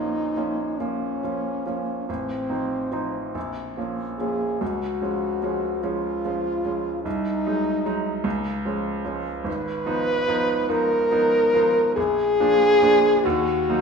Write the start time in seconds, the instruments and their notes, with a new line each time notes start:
Already playing: grand piano A#1 F3 A#3 C#4, french horn D#4
0.36 grand piano F3 A#3 C#4
0.78 grand piano F3 A#3 C#4, french horn C#4
1.23 grand piano F3 A#3 C#4
1.66 grand piano F3 A#3 C#4
2.08 grand piano A1, french horn C4
2.50 grand piano F3 C4 D#4
2.92 grand piano F3 C4 D#4
3.35 grand piano A#1
3.77 grand piano F3 A#3 C#4
4.19 grand piano F3 A#3 C#4, french horn G#4
4.61 grand piano C#2, french horn F#4
5.02 grand piano F3 G#3 C#4
5.42 grand piano F3 G#3 C#4
5.82 grand piano F3 G#3 C#4, french horn F4
6.25 grand piano F3 G#3 C#4
6.64 grand piano F3 G#3 C#4
7.04 grand piano C2, french horn D#4
7.46 grand piano F#3 G#3 D#4
7.85 grand piano F#3 G#3 D#4
8.24 grand piano C#2
8.65 grand piano F3 G#3 C#4
9.04 grand piano F3 G#3 C#4
9.44 grand piano G#1, french horn B4
9.86 grand piano F3 B3 D#4
10.28 grand piano F3 B3 D#4
10.69 grand piano F3 B3 D#4, french horn A#4
11.11 grand piano F3 B3 D#4
11.54 grand piano F3 B3 D#4
11.96 grand piano A#1, french horn G#4
12.40 grand piano F3 A#3 D4
12.82 grand piano F3 A#3 D4
13.25 grand piano D#2, french horn F#4
13.69 grand piano F#3 A#3 D#4